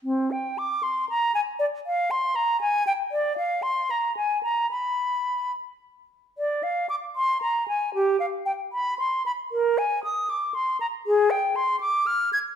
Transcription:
\new Staff \with { instrumentName = "Flute" } { \time 6/8 \key c \minor \tempo 4. = 77 c'8 g''8 d'''8 c'''8 bes''8 aes''8 | d''8 f''8 c'''8 bes''8 aes''8 g''8 | d''8 f''8 c'''8 bes''8 aes''8 bes''8 | b''4. r4. |
d''8 f''8 d'''8 c'''8 bes''8 aes''8 | g'8 f''8 g''8 b''8 c'''8 b''8 | bes'8 aes''8 ees'''8 d'''8 c'''8 bes''8 | aes'8 g''8 c'''8 d'''8 f'''8 aes'''8 | }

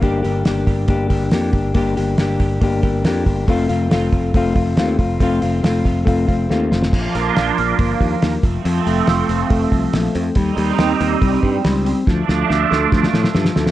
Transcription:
<<
  \new Staff \with { instrumentName = "Clean electric guitar" } { \time 4/4 \key g \minor \tempo 4 = 140 <bes d' g'>8 <d' g'>8 <bes d' g'>8 <d' g'>4 <d' g'>8 <bes d' g'>4 | <bes d' g'>8 <d' g'>8 <bes d' g'>8 <d' g'>4 <d' g'>8 <bes d' g'>4 | <a c' f'>8 <c' f'>8 <a c' f'>8 <c' f'>4 <c' f'>8 <a c' f'>4 | <a c' f'>8 <c' f'>8 <a c' f'>8 <c' f'>4 <c' f'>8 <a c' f'>4 |
<f bes d' f'>2.~ <f bes d' f'>8 <f a c'>8~ | <f a c'>1 | <g c' ees'>1 | <f a d'>1 | }
  \new Staff \with { instrumentName = "Clean electric guitar" } { \time 4/4 \key g \minor <bes d' g'>8 <d' g'>8 <bes d' g'>4 <bes d' g'>8 <d' g'>8 <bes d' g'>8 <d' g'>8 | <bes d' g'>8 <d' g'>8 <bes d' g'>4 <bes d' g'>8 <d' g'>8 <bes d' g'>8 <d' g'>8 | <a c' f'>8 <c' f'>8 <a c' f'>4 <a c' f'>8 <c' f'>8 <a c' f'>8 <c' f'>8 | <a c' f'>8 <c' f'>8 <a c' f'>4 <a c' f'>8 <c' f'>8 <a c' f'>8 <c' f'>8 |
f8 bes8 f'8 d'8 bes8 f8 bes8 f8 | f8 a8 f'8 c'8 a8 f8 a8 c'8 | g8 g8 ees'8 c'8 g8 g8 g8 c'8 | f8 f8 d'8 a8 f8 f8 f8 a8 | }
  \new Staff \with { instrumentName = "Picked electric bass" } { \clef bass \time 4/4 \key g \minor g,,8 g,,8 g,,8 g,,8 g,,8 g,,8 f,8 g,,8 | g,,8 g,,8 g,,8 g,,8 g,,8 g,,8 f,8 g,,8 | f,,8 f,,8 f,,8 f,,8 f,,8 f,,8 ees,8 f,,8 | f,,8 f,,8 f,,8 f,,8 f,,8 f,,8 ees,8 f,,8 |
bes,,8 bes,,8 bes,,8 bes,,8 g,,8 ees,8 ees,8 f,,8 | f,8 f,,8 f,,8 f,,8 f,,8 c,8 bes,,8 f,8 | ees,8 ees,8 ees,8 ees,8 c,8 g,8 cis,4 | d,8 d,8 d,8 d,8 d,8 a,8 g,8 d,8 | }
  \new DrumStaff \with { instrumentName = "Drums" } \drummode { \time 4/4 <hho bd>8 hho8 <hho sn>8 <hho bd>8 <hho bd>8 <hho bd>8 <hho sn>8 <hho bd>8 | <hho bd>8 hho8 <hho sn>8 <hho bd>8 <hho bd>8 <hho bd>8 <hho sn>8 <hho bd>8 | <hho bd>8 hho8 <hho sn>8 <hho bd>8 <hho bd>8 <hho bd>8 <hho sn>8 <hho bd>8 | <hho bd>8 hho8 <hho sn>8 <hho bd>8 <hho bd>8 <hho bd>8 sn8 sn16 sn16 |
<cymc bd>8 hho8 <hho sn>8 hho8 <hho bd>8 <hho bd>8 <hho sn>8 <hho bd>8 | hho8 hho8 <hho sn>8 hho8 <hho bd>8 <hho bd>8 <hho sn>8 hho8 | <hho bd>8 hho8 <hho sn>8 hho8 <hho bd>8 <hho bd>8 <hho sn>8 hho8 | <bd sn>8 sn8 sn8 sn8 <bd sn>16 sn16 sn16 sn16 sn16 sn16 sn16 sn16 | }
>>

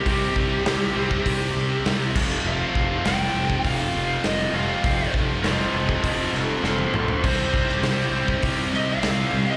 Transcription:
<<
  \new Staff \with { instrumentName = "Lead electric guitar" } { \time 4/4 \key c \dorian \tempo 4 = 100 g'2. r4 | f''4 g''4 f''4 ees''8 f''8~ | f''8 r8 <c'' ees''>8 <c'' ees''>8 <c'' ees''>8 <a' c''>8 <a' c''>8 <a' c''>8 | c''2 r8 ees''16 f''4 ees''16 | }
  \new Staff \with { instrumentName = "Distorted electric guitar" } { \time 4/4 \key c \dorian <c ees g c' g'>8 <c ees g c' g'>8 <c ees g c' g'>8 <c ees g c' g'>8 <c ees g c' g'>8 <c ees g c' g'>8 <c ees g c' g'>8 <f a c' f'>8 | <f a c' f'>8 <f a c' f'>8 <f a c' f'>8 <f a c' f'>8 <f a c' f'>8 <f a c' f'>8 <f a c' f'>8 <f a c' f'>8 | <f a c' f'>8 <f a c' f'>8 <f a c' f'>8 <f a c' f'>8 <f a c' f'>8 <f a c' f'>8 <f a c' f'>8 <f a c' f'>8 | <c ees g c' g'>8 <c ees g c' g'>8 <c ees g c' g'>8 <c ees g c' g'>8 <c ees g c' g'>8 <c ees g c' g'>8 <c ees g c' g'>8 <c ees g c' g'>8 | }
  \new Staff \with { instrumentName = "Distorted electric guitar" } { \clef bass \time 4/4 \key c \dorian <c g c'>4. <c g c'>2 <f, c f>8~ | <f, c f>4 <f, c f>2~ <f, c f>8 <f, c f>8~ | <f, c f>4 <f, c f>2~ <f, c f>8 r8 | <c g c'>4. <c g c'>2~ <c g c'>8 | }
  \new Staff \with { instrumentName = "Fingered electric bass" } { \clef bass \time 4/4 \key c \dorian c,8 c,8 c,8 c,8 c,8 c,8 c,8 f,,8 | f,,8 f,,8 f,,8 f,,8 f,,8 f,,8 f,,8 f,,8 | f,,8 f,,8 f,,8 f,,8 f,,8 f,,8 f,,8 bes,,8 | c,8 c,8 c,8 c,8 c,8 c,8 c,8 c,8 | }
  \new DrumStaff \with { instrumentName = "Drums" } \drummode { \time 4/4 <hho bd>8 bd8 <hho sn>8. bd16 <hho bd>4 <hho sn>8 <cymc bd>8 | r8 bd8 <hho sn>8. bd16 <hho bd>4 <hho sn>4 | <hho bd>8 bd8 <hho sn>8. bd16 <hho bd>8 sn8 sn16 tommh16 toml16 tomfh16 | <cymc bd>8 bd16 sn16 <hho sn>8. bd16 <hho bd>8 sn8 <hho sn>4 | }
>>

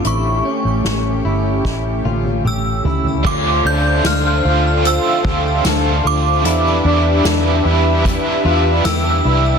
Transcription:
<<
  \new Staff \with { instrumentName = "Synth bell" } { \time 4/4 \key d \dorian \tempo 4 = 75 cis'''2. e'''4 | d'''8 g'''8 f'''4 e'''4 r8 d'''8~ | d'''2. e'''4 | }
  \new Staff \with { instrumentName = "Analog synth pad" } { \time 4/4 \key d \dorian << { <cis' g'>1 | <a' c'' f''>1 | <g' b' e''>1 | } \\ { a1 | d'1~ | d'1 | } >> }
  \new Staff \with { instrumentName = "Clean electric guitar" } { \time 4/4 \key d \dorian e'8 cis'4 e'4 f'8 g'8 e'8 | f'8 d'4 f'4 g'8 a'8 f'8 | e'8 d'4 e'4 f'8 g'8 e'8 | }
  \new Staff \with { instrumentName = "Overdriven electric guitar" } { \time 4/4 \key d \dorian r1 | <d a c' f'>8 <a c' f'>8 <d a c' f'>8 <a c' f'>8 <d a c' f'>8 <a c' f'>8 <d a c' f'>8 <a c' f'>8 | <e, b, e g d' e'>8 <e g d' e'>8 <e, b, e g d' e'>8 <e g d' e'>8 <e g d' e'>8 <g d' e'>8 <e, b, e g d' e'>8 <e g d' e'>8 | }
  \new Staff \with { instrumentName = "Fingered electric bass" } { \clef bass \time 4/4 \key d \dorian a,,8 r16 a,,16 r8 g,,8 a,,8 a,,8 a,,8 cis,8 | d,8 d,8 d,8 d,8. r16 d,8 d,8 d,8 | e,8 e,8 r8 e,8. r16 e,8 e,8 c,8 | }
  \new DrumStaff \with { instrumentName = "Drums" } \drummode { \time 4/4 hh4 <hh sn>4 <bd sn>8 tommh16 tommh16 toml8 tomfh16 tomfh16 | <cymc bd>4 <hh sn tamb>4 hh8 bd8 <hh sn tamb>4 | hh4 <hh sn tamb>4 <hh bd>4 <hh sn tamb>4 | }
>>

